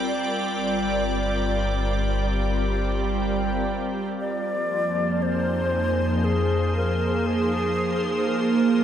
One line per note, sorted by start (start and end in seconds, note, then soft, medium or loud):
0.00 4.19 G3 medium
0.00 5.81 C4 medium
0.00 5.81 F4 medium
0.00 5.81 A#4 medium
0.00 5.77 D5 medium
0.00 4.21 G5 medium
0.12 4.13 G1 medium
4.20 8.21 F2 medium
4.20 8.84 F3 medium
4.20 5.24 D5 medium
4.20 8.84 F5 medium
4.48 8.84 A#3 medium
4.48 8.84 C5 medium
4.72 8.84 G#4 medium
5.02 8.84 D#4 medium
5.22 6.25 C5 medium
6.24 6.74 G#4 medium
6.77 7.28 A#4 medium
7.27 8.29 G#4 medium
8.26 8.84 A#1 medium
8.26 8.84 A#4 medium